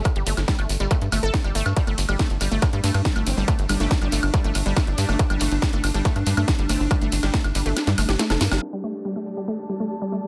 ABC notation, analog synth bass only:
X:1
M:4/4
L:1/16
Q:1/4=140
K:Cdor
V:1 name="Analog synth bass" clef=bass
z G,,, G,,, G,,, z G,,, G,,, G,,, z G,, G,,, G,,, z G,,, G,,, G,, | z G,,, G,,, G,,, z G,,, G,,, G,,, z G,, G,, G,, z G,,, G,,, G,,, | z G,,, G,,, G,,, z G,,, G,,, G,,, z G,,, G,,, G,,, z G,,, G,, G,,, | z G,,, G,,, G,,, z G,,, G,,, G,,, z G,, G,, G,, z G,,, G,,, G,,, |
z G,,, G,,, G,,, z G,,, G,,, G,,, z G,, G,,, G,,, z F,,, G,, G,,, | z16 |]